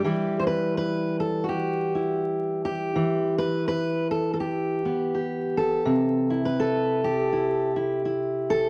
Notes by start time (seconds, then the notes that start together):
Already playing: G4
0.04 E3 G3 E4
0.39 C5
0.47 B4
0.77 B4
1.20 A4
1.44 F#4
1.49 G4
1.95 E4
2.65 G4
2.96 E3
3.38 B4
3.68 B4
4.11 A4
4.34 A4
4.40 G4
4.85 B3
5.14 G4
5.57 A4
5.85 C3
6.30 E4
6.45 B4
6.60 A4
7.04 G4
7.33 E4
7.76 E4
8.05 E4
8.50 A4